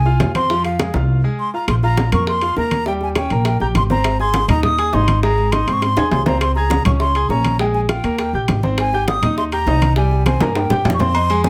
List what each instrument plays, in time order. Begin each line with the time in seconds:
Already playing: upright bass C2, flute G#5
0.05 grand piano F4 F5 F6, high bongo, high conga
0.20 upright bass F2, high bongo, low bongo, high conga, high timbale, low timbale
0.35 grand piano C4 C5 C6, flute C6, high conga, high timbale
0.50 grand piano F3 F4 F5, high bongo, high conga
0.65 flute F5, high bongo, high conga, high timbale
0.79 grand piano G#3 G#4 G#5, high bongo, high conga, high timbale, low timbale
0.94 upright bass C2, grand piano F4 F5 F6, high bongo, high conga
1.24 grand piano G#3 G#4 G#5
1.39 flute C6
1.54 grand piano F4 F5 F6, flute A#5
1.68 upright bass A#1, flute C6, high bongo, high conga, high timbale
1.83 grand piano F4 F5 F6, flute A#5, high bongo, high conga
1.97 high bongo, high conga, high timbale
2.12 upright bass F2, grand piano A#3 A#4 A#5, flute C#6, high bongo, high conga, low conga, high timbale
2.27 flute C6, high bongo, high conga
2.41 grand piano F4 F5 F6, high bongo, high conga, high timbale
2.56 upright bass D#2, grand piano A#3 A#4 A#5, flute A#5, high bongo, low bongo, high conga
2.71 high conga, high timbale
2.86 grand piano G3 G4 G5, flute G5, high bongo, high conga
3.01 flute G#5, high bongo, high conga
3.15 grand piano C#4 C#5 C#6, flute G5, high bongo, high conga, high timbale
3.30 upright bass A#1, grand piano A#3 A#4 A#5, high bongo, high timbale
3.45 flute G5, high bongo, high conga, high timbale
3.60 upright bass A#1, grand piano G4 G5 G6, flute A#5, high bongo, high conga
3.75 upright bass G#1, flute C6, high bongo, low bongo, high conga, high timbale
3.90 grand piano C4 C5 C6, flute A#5, high conga
4.04 high bongo, high conga, high timbale
4.20 grand piano G#4 G#5 G#6, flute C6, high bongo, high conga
4.34 high bongo, high conga, high timbale
4.48 upright bass D#2, grand piano D#4 D#5 D#6, flute A#5, high bongo, high conga, low conga, high timbale
4.63 flute D#6, high bongo, high conga, low conga
4.78 grand piano G#4 G#5 G#6, high bongo, high conga, high timbale
4.93 upright bass G#1, grand piano D#4 D#5 D#6, flute C6, high bongo, low bongo, high conga, low timbale
5.08 high conga, high timbale
5.23 grand piano G#3 G#4 G#5, flute A#5, high bongo, high conga
5.38 high bongo, high conga
5.52 grand piano D#4 D#5 D#6, flute C6, high bongo, high conga, high timbale
5.67 upright bass G#2, grand piano C4 C5 C6, high bongo, high timbale
5.73 flute C#6
5.82 flute C6, high bongo, high conga, high timbale
5.97 upright bass D#2, grand piano G#4 G#5 G#6, high bongo, high conga, high timbale
6.11 upright bass C#2, flute C6, high conga, low timbale
6.26 grand piano C4 C5 C6, flute A#5, low bongo, high conga, low timbale
6.41 flute C6, high bongo, high conga, high timbale
6.55 grand piano G#4 G#5 G#6, flute A#5, high bongo, high conga
6.70 high bongo, high conga, high timbale
6.85 upright bass C#2, grand piano C#4 C#5 C#6, flute C#6, high bongo, high conga, low conga, high timbale
7.00 flute C6, high bongo, high conga
7.15 grand piano G#4 G#5 G#6, high bongo, high conga, high timbale
7.29 upright bass A#1, grand piano C#4 C#5 C#6, flute A#5, high bongo, low bongo, high conga
7.45 high conga, high timbale
7.59 grand piano G#3 G#4 G#5, flute G5, high bongo, high conga
7.74 flute G#5, high bongo, high conga
7.89 grand piano F4 F5 F6, flute G5, high bongo, high conga, high timbale
8.04 upright bass D#2, grand piano A#3 A#4 A#5, high bongo, high timbale
8.18 flute G5, high bongo, high conga, high timbale
8.33 upright bass A#1, grand piano G4 G5 G6, high bongo, high conga
8.48 upright bass G#1, high bongo, low bongo, high conga, high timbale
8.63 grand piano C4 C5 C6, high conga
8.78 flute G#5, high bongo, high conga, high timbale
8.93 grand piano G4 G5 G6, high bongo, high conga
9.08 flute D#6, high bongo, high conga, high timbale
9.22 upright bass D#2, grand piano D#4 D#5 D#6, high bongo, high conga, low conga, high timbale
9.38 flute C6, high bongo, high conga
9.52 grand piano G4 G5 G6, flute A#5, high bongo, high conga, high timbale
9.66 upright bass C2, grand piano D#4 D#5 D#6, high bongo, low bongo, high conga, low timbale
9.82 high conga, high timbale
9.96 grand piano G3 G4 G5, flute G#5, high bongo, high conga
10.11 high bongo, high conga
10.26 grand piano C4 C5 C6, flute G#5, high bongo, high conga, high timbale
10.40 upright bass G2, grand piano A#3 A#4 A#5, high bongo, high conga, high timbale
10.55 flute G5, high bongo, high timbale
10.70 upright bass G2, grand piano G4 G5 G6, high bongo, low conga, high timbale
10.85 upright bass F2, low conga, low timbale
10.90 low bongo
10.94 flute C#6
10.99 grand piano C4 C5 C6, flute C6, low bongo, low conga, low timbale
11.15 grand piano C4 C5 D#5, high conga, low agogo
11.29 grand piano G#3 G#4 G#5, high conga, low agogo
11.44 flute G#5, high conga